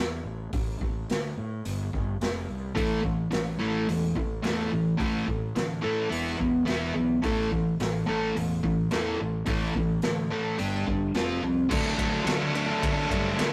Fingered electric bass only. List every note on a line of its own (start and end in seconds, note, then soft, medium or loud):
0.00 0.20 E2 medium
0.24 0.48 A1 medium
0.53 0.76 A1 medium
0.81 1.04 A1 medium
1.10 1.33 D2 medium
1.37 1.60 A2 medium
1.66 1.89 G1 medium
1.93 2.16 G1 medium
2.21 2.44 F1 medium
2.48 2.72 C2 medium
2.77 3.23 A1 medium
3.33 3.56 A1 medium
3.61 3.84 A1 medium
3.88 4.11 E1 medium
4.17 4.40 A1 medium
4.44 4.67 E2 medium
4.73 4.96 A1 medium
4.99 5.23 A1 medium
5.28 5.51 A1 medium
5.55 5.79 D2 medium
5.85 6.07 A2 medium
6.11 6.34 E1 medium
6.40 6.63 E1 medium
6.67 6.90 E1 medium
6.96 7.19 B1 medium
7.24 7.70 A1 medium
7.79 8.03 A1 medium
8.08 8.31 A1 medium
8.37 8.59 E1 medium
8.64 8.87 A1 medium
8.91 9.14 E2 medium
9.21 9.44 A1 medium
9.47 9.70 A1 medium
9.75 9.99 A1 medium
10.05 10.27 D2 medium
10.32 10.55 A2 medium
10.59 10.83 G1 medium
10.87 11.10 G1 medium
11.15 11.38 F1 medium
11.43 11.66 C2 medium
11.71 11.93 D2 medium
11.98 12.20 D2 medium
12.25 12.69 D2 loud
12.82 13.04 D3 loud
13.10 13.32 G2 loud
13.38 13.53 D2 medium